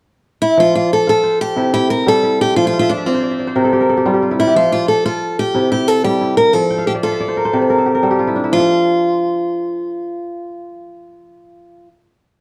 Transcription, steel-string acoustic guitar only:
0.42 0.58 E4 medium
0.60 0.74 F4 medium
0.75 0.92 F4 medium
0.93 1.08 A4 medium
1.09 1.41 A4 medium
1.41 1.72 G4 medium
1.74 1.89 G4 medium
1.90 2.07 A#4 medium
2.08 2.41 A4 medium
2.41 2.56 G4 medium
2.56 2.66 F4 medium
2.67 2.78 F4 medium
2.79 2.90 F4 medium
2.89 3.06 D4 medium
3.06 4.43 C4 medium
4.40 4.56 E4 medium
4.56 4.71 F4 medium
4.72 4.88 F4 medium
4.88 5.04 A4 medium
5.06 5.39 A4 medium
5.39 5.70 G4 medium
5.72 5.88 G4 medium
5.88 6.04 A4 medium
6.04 6.37 G4 medium
6.37 6.53 A#4 medium
6.53 6.87 A4 medium
6.87 6.92 G4 medium
7.03 8.36 A4 medium
8.53 11.88 F4 medium

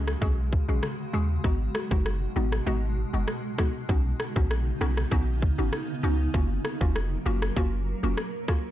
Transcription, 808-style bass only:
0.00 0.16 C#2 loud
0.22 0.59 B1 medium
0.69 0.80 A#1 medium
1.14 1.38 D#2 loud
1.44 1.69 G#1 medium
1.91 2.27 F#1 medium
2.36 2.61 G#1 loud
2.67 3.04 G#1 loud
3.14 3.25 F#1 medium
3.89 4.14 B1 loud
4.36 4.72 A#1 medium
4.81 5.06 B1 loud
5.12 5.49 A#1 medium
5.59 5.70 G#1 medium
6.03 6.28 C#2 loud
6.34 6.59 F#1 loud
6.81 7.17 F1 medium
7.26 7.51 F#1 loud
7.57 7.94 F#1 medium
8.03 8.15 F1 loud

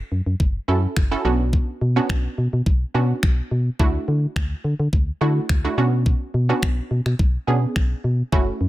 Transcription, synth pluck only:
0.00 0.20 C#4 loud
0.00 0.20 E4 medium
0.00 0.21 F#4 medium
0.00 0.21 A4 loud
0.68 1.04 C#4 medium
0.68 1.04 E4 medium
0.68 1.04 F#4 medium
0.68 1.04 A4 medium
1.11 1.22 C#4 medium
1.11 1.22 E4 medium
1.11 1.23 F#4 medium
1.11 1.23 A4 loud
1.25 1.83 B3 medium
1.25 1.83 C#4 medium
1.25 1.83 D4 medium
1.25 1.83 F#4 loud
1.96 2.78 B3 medium
1.96 2.78 C#4 medium
1.96 2.78 D4 medium
1.96 2.78 F#4 loud
2.94 3.65 B3 medium
2.94 3.65 C#4 medium
2.94 3.65 D4 medium
2.94 3.65 F#4 medium
3.79 4.73 A3 loud
3.79 4.73 D4 medium
3.79 4.73 E4 medium
3.79 4.73 F#4 loud
5.21 5.56 A3 medium
5.21 5.56 D4 medium
5.21 5.57 E4 medium
5.21 5.57 F#4 medium
5.64 5.75 A3 loud
5.64 5.75 D4 medium
5.64 5.75 E4 medium
5.64 5.76 F#4 loud
5.78 6.36 B3 medium
5.78 6.36 C#4 medium
5.78 6.36 D4 medium
5.78 6.36 F#4 loud
6.49 7.31 B3 medium
6.49 7.31 C#4 medium
6.49 7.31 D4 medium
6.49 7.31 F#4 loud
7.47 8.18 B3 medium
7.47 8.18 C#4 medium
7.47 8.18 D4 medium
7.47 8.18 G#4 medium
8.32 8.69 A3 loud
8.32 8.69 C#4 medium
8.32 8.69 E4 medium
8.32 8.69 F#4 loud

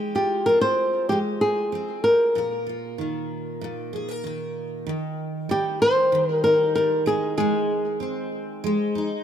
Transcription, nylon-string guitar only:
0.16 0.47 G4 medium
0.46 0.61 A#4 loud
0.61 1.09 C5 loud
1.09 1.18 G4 medium
1.41 2.03 G#4 medium
2.04 4.20 A#4 medium
5.51 5.81 G4 medium
5.82 6.31 C5 loud
6.31 6.43 A#4 loud
6.44 6.74 A#4 medium
6.75 7.07 A#4 medium
7.07 7.37 G#4 medium
7.38 7.97 G#4 medium

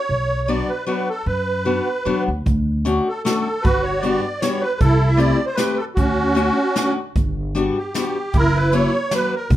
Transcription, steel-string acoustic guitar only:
0.48 0.70 F#3 medium
0.48 0.70 B3 medium
0.48 0.70 D4 medium
0.48 0.70 F#4 medium
0.86 1.08 F#3 medium
0.86 1.08 B3 soft
0.86 1.09 D4 medium
0.86 1.09 F#4 medium
1.65 1.87 F#3 medium
1.65 1.87 B3 soft
1.65 1.87 D4 soft
1.65 1.87 F#4 medium
2.05 2.28 F#3 medium
2.05 2.28 B3 soft
2.05 2.28 D4 medium
2.05 2.28 F#4 medium
2.85 3.07 A3 medium
2.85 3.07 C#4 medium
2.85 3.07 D4 soft
2.85 3.07 F#4 medium
3.25 3.46 A3 medium
3.25 3.47 C#4 medium
3.25 3.46 D4 soft
3.25 3.47 F#4 medium
4.03 4.24 G3 medium
4.03 4.25 B3 medium
4.03 4.25 D4 medium
4.03 4.25 F#4 medium
4.42 4.63 G3 medium
4.42 4.63 B3 medium
4.42 4.63 D4 medium
4.42 4.63 F#4 medium
5.17 5.39 A3 medium
5.17 5.39 C4 medium
5.17 5.40 E4 medium
5.17 5.39 G4 medium
5.57 5.79 A3 medium
5.57 5.79 C4 medium
5.57 5.79 E4 medium
5.57 5.79 G4 medium
6.35 6.57 A3 medium
6.35 6.57 C#4 medium
6.35 6.57 D4 soft
6.35 6.57 F#4 medium
6.76 6.97 A3 medium
6.76 6.97 C#4 medium
6.76 6.98 D4 medium
6.76 6.98 F#4 medium
7.55 7.77 G3 medium
7.55 7.77 B3 medium
7.55 7.77 D4 medium
7.55 7.77 F#4 medium
7.94 8.16 G3 medium
7.94 8.16 B3 soft
7.94 8.17 D4 medium
7.94 8.17 F#4 medium
8.72 8.94 F#3 medium
8.72 8.94 A#3 medium
8.72 8.94 C#4 medium
8.72 8.94 E4 medium
9.12 9.33 F#3 medium
9.12 9.33 A#3 medium
9.12 9.33 C#4 medium
9.12 9.33 E4 medium

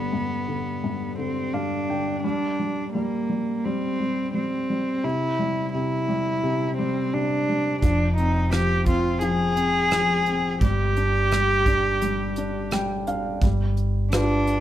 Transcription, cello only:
0.00 1.19 B3 medium
1.19 1.54 C4 medium
1.53 2.23 D4 medium
2.24 2.90 D4 medium
2.93 3.66 A#3 medium
3.65 4.34 C4 medium
4.35 5.06 C4 medium
5.04 5.73 E4 medium
5.74 6.74 E4 medium
6.78 7.15 C4 medium
7.14 7.82 D4 medium
7.82 8.15 D4 medium
8.17 8.50 D#4 medium
8.54 8.86 G4 medium
8.89 9.20 F4 medium
9.23 10.58 G#4 medium
10.63 12.68 G4 medium
14.13 14.60 D4 medium

